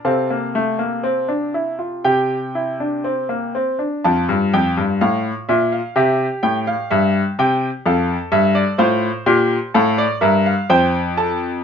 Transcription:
0.05 C3 C4 A4 F5
0.30 A#3
0.55 A3
0.79 A#3
1.04 C4
1.28 D4
1.54 E4
1.79 F4
2.04 C3 G4 G5
2.55 E4
2.80 D4
3.04 C4
3.29 A#3
3.55 C4
3.79 D4
4.04 F2 F4 A5
4.29 G2
4.53 F2 G5
4.77 G2
5.01 A2 F5
5.49 A#2 E5
5.72 F5
5.96 C3 G4 E5
6.43 A2 G5
6.67 F5
6.91 G2 E5
7.39 C3 G5
7.86 F2 A4 F5
8.32 G2 E5
8.55 D5
8.78 A2 F4 C5
9.26 A#2 G4
9.74 A2 A4 F5
9.98 D5
10.21 G2 A#4 E5
10.46 F5
10.70 F2 C5 G5
11.17 A4 A5

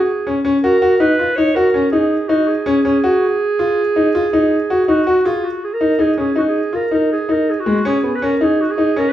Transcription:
Already playing: G#4
0.27 C#4
0.45 C#4
0.63 F#4 A#4
0.82 F#4
1.00 D#4 B4
1.19 F4
1.36 D#4 C#5
1.55 F#4 A#4
1.74 C#4
1.91 D#4 G#4
2.28 D#4 F#4
2.47 G#4
2.66 C#4
2.85 C#4
3.04 F#4
3.59 F4
3.96 D#4
4.15 F4
4.33 D#4
4.70 F#4
4.88 D#4 F#4
5.07 F#4
5.25 F4 G#4
5.44 F#4
5.64 G#4
5.73 A#4
5.81 D#4
5.99 D#4 G#4
6.18 C#4 G#4
6.36 D#4 F#4
6.47 G#4
6.73 F4 A#4
6.91 D#4 A#4
7.12 G#4
7.29 D#4 A#4
7.50 G#4
7.60 F#4
7.66 G#3
7.85 C#4 G#4
8.03 B3
8.15 B4
8.22 C#4 A#4
8.41 D#4 G#4
8.61 F#4
8.71 G#4
8.78 D#4
8.96 C#4 A#4
9.09 B4

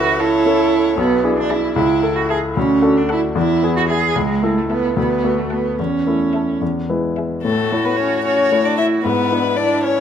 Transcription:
Already playing: C#2 C#4 E4 F#4 A4 B4 E5
0.19 E4 A4 C#5
0.46 C#4 E4 A4
0.97 B1 B3
1.23 D4 E4 G#4
1.39 D4
1.50 E4 G#4 E5
1.75 C#2 E4
2.03 E4 A4
2.16 F#4
2.29 G#4 A4 E5
2.56 D2 C#4
2.82 D4 F#4 A4
2.97 D4
3.09 E4 A4 F#5
3.35 E2 E4
3.63 B3 E4 G#4
3.76 F#4
3.88 G#4 E5
4.15 C#2 G#3
4.42 A3 E4 A4
4.58 A3
4.69 B3 A4 E5
4.96 D2 B3
5.24 A3 F#4 A4
5.39 A3
5.50 B3 A4 F#5
5.79 E2 C#4
6.07 A3 E4 A4
6.33 A4 E5
6.61 E2
6.89 G#3 E4 B4
7.17 G#4 E5
7.43 A2 A3 F#4 A4
7.72 A3 E4 C#5
7.85 B3 B4
7.97 C#4 C#5
8.24 C#4 C#5
8.52 A3 E4 C#5
8.64 D4 D5
8.77 E4 E5
9.04 G#2 B3 E4 B4
9.31 D4 E4 B4
9.57 D4 D5
9.83 C#4 C#5

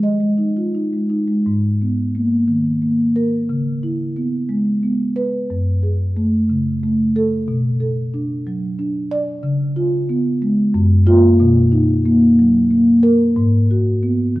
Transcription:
Already playing: F3 G#3
0.03 D#5
0.21 G#3
0.38 D#4
0.57 F4
0.75 D#4
0.93 G#3
1.10 D#4
1.28 G#3
1.46 G#2
1.82 B3
2.15 A#3
2.48 D#3
2.82 A#3
3.16 A#4
3.49 C#3
3.83 E4
4.16 B3
4.49 G#3
4.83 B3
5.16 B4
5.50 F#2
5.83 G#4
6.17 A3
6.50 C#3
6.83 A3
7.16 A4
7.48 B2
7.80 A4
8.14 D4
8.47 F#3
8.79 D4
9.11 D5
9.43 C#3
9.76 F4
10.09 B3
10.42 G#3
10.74 F#2
11.06 A#3 F4
11.40 B2
11.72 D#4
12.06 A#3
12.39 F#3
12.71 A#3
13.03 A#4
13.36 G#2
13.71 F#4
14.03 B3
14.36 D#3

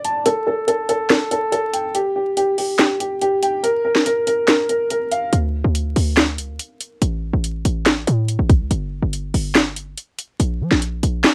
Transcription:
Already playing: D5
0.05 A5, closed hi-hat
0.26 A4, closed hi-hat
0.47 A4
0.68 A4, closed hi-hat
0.89 A4, closed hi-hat
1.10 A4, snare, clap, closed hi-hat
1.31 A4, closed hi-hat
1.52 A4, closed hi-hat
1.73 G5, closed hi-hat
1.95 G4, closed hi-hat
2.16 G4
2.37 G4, closed hi-hat
2.58 G4, open hi-hat
2.79 G4, snare, clap, closed hi-hat
3.00 G4, closed hi-hat
3.21 G4, closed hi-hat
3.43 G5, closed hi-hat
3.63 A#4, closed hi-hat
3.85 A#4
3.95 snare
4.06 A#4, closed hi-hat
4.27 A#4, closed hi-hat
4.48 A#4, snare, clap, closed hi-hat
4.69 A#4, closed hi-hat
4.90 A#4, closed hi-hat
5.11 F5, closed hi-hat
5.33 D2, closed hi-hat
5.64 D2
5.75 closed hi-hat
5.96 D2, open hi-hat
6.17 snare, clap, closed hi-hat
6.38 C#2, closed hi-hat
6.49 D2
6.59 closed hi-hat
6.81 closed hi-hat
7.02 A1, closed hi-hat
7.33 A1
7.44 closed hi-hat
7.65 A1, closed hi-hat
7.86 snare, clap, closed hi-hat
8.07 A2, closed hi-hat
8.28 closed hi-hat
8.39 A1
8.50 kick, closed hi-hat
8.60 C#2
8.71 G1, closed hi-hat
9.02 G1
9.13 closed hi-hat
9.34 G1, open hi-hat
9.55 snare, clap, closed hi-hat
9.76 closed hi-hat
9.97 closed hi-hat
10.19 closed hi-hat
10.40 A#1, closed hi-hat
10.61 F3
10.71 A#1, snare
10.82 closed hi-hat
11.03 A#1, closed hi-hat
11.24 snare, clap, closed hi-hat

